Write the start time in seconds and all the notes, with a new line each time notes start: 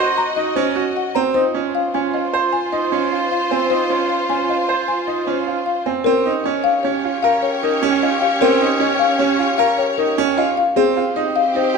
Already playing: F#4 C5 D#5
0.18 A#5
0.36 D#4 D#5
0.56 C#4 C5
0.76 F#4
0.97 F#5
1.15 C4 A#5
1.34 D#4 F4 C5
1.54 C#4
1.75 F5
1.94 C#4 G#5
2.14 F4 D#5
2.33 C5
2.53 G#5
2.72 D#4 D#5
2.92 C#4 C5
3.12 F4
3.31 F5
3.51 C4 G#5
3.70 D#4 C5
3.90 C#4
4.09 F5
4.29 C#4 G#5
4.49 F4 D#5
4.69 C5
4.88 G#5
5.07 D#4 D#5
5.27 C#4 C5
5.47 F4
5.66 F5
5.86 C4 G#5
6.04 C4 C#4 G4 A#4 C#5
6.26 D#4
6.44 C#4 D#5
6.64 F5
6.83 C#4 C#5
7.04 F4
7.23 A#4 F5
7.42 C#5
7.63 D#4 A#4
7.83 C#4
8.02 F4 D#5
8.22 F5
8.41 C4 A#4
8.61 D#4
8.80 C#4 D#5
8.99 F5
9.18 C#4 C#5
9.39 F4
9.58 A#4 F5
9.78 C#5
9.98 D#4 A#4
10.18 C#4
10.37 F4 D#5
10.57 F5
10.76 C4 G4 G#4 C5
10.96 F4
11.16 D#4 D#5
11.36 F5
11.55 D#4 C5
11.74 G4